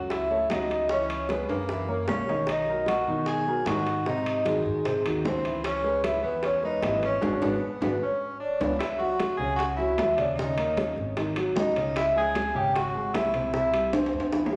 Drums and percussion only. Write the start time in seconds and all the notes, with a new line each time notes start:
0.10 high bongo, high conga, high timbale
0.31 high bongo, high conga
0.50 high bongo, low bongo, high conga, high timbale, low timbale
0.70 high bongo, high conga, high timbale
0.89 high bongo, high conga
1.09 high conga, high timbale
1.29 high bongo, high conga, high timbale, low timbale
1.49 high bongo, high conga, high timbale
1.69 high bongo, high conga
1.88 high bongo, high conga
2.08 high bongo, low bongo, high conga, low timbale
2.27 high bongo, low timbale
2.47 high bongo, high conga, high timbale
2.66 high bongo, high conga
2.86 high bongo, high conga, high timbale, low timbale
3.08 high conga
3.26 high bongo, high conga, high timbale
3.47 high bongo, high conga
3.66 high bongo, low bongo, high conga, high timbale, low timbale
3.87 high bongo, high conga, high timbale
4.06 high bongo, high conga
4.26 high conga, high timbale
4.45 high bongo, high conga, high timbale, low timbale
4.66 high bongo, high conga
4.85 high bongo, high conga, high timbale
5.06 high bongo, high conga, high timbale
5.25 high bongo, low bongo, high conga, low timbale
5.45 high bongo, high timbale
5.64 high bongo, high conga, high timbale
5.84 high bongo, high conga
6.04 high bongo, high conga, high timbale, low timbale
6.25 high conga
6.43 high bongo, high conga, high timbale
6.63 high bongo, high conga
6.83 high bongo, low bongo, high conga, high timbale, low timbale
7.02 high bongo, high conga, high timbale
7.22 low bongo, high conga, high timbale
7.42 low bongo, high conga, high timbale
7.82 low bongo, high conga, high timbale
8.61 low bongo, high conga, high timbale
8.80 high bongo, high conga, high timbale
9.00 high bongo, high conga
9.20 high bongo, high conga, high timbale, low timbale
9.40 high conga
9.59 high bongo, high conga, high timbale
9.79 high bongo, high conga
9.98 high bongo, low bongo, high conga, high timbale, low timbale
10.18 high bongo, high conga, high timbale
10.38 high bongo, high conga
10.58 high conga, high timbale
10.77 high bongo, high conga, high timbale, low timbale
10.97 high bongo, high conga
11.17 high bongo, high conga, high timbale
11.36 high bongo, high conga, high timbale
11.56 high bongo, low bongo, high conga, low timbale
11.76 high bongo, high timbale
11.96 high bongo, high conga, high timbale
12.16 high bongo, high conga
12.35 high bongo, high conga, high timbale, low timbale
12.55 high conga
12.76 high bongo, high conga, high timbale
12.95 high bongo, high conga
13.15 high bongo, low bongo, high conga, high timbale, low timbale
13.34 high bongo, high conga, high timbale
13.54 high bongo, high conga
13.74 high conga, high timbale
13.93 high bongo, high conga, high timbale
14.06 high timbale
14.13 high bongo, high conga
14.20 high timbale
14.32 high bongo, high conga, high timbale
14.46 low timbale
14.53 high bongo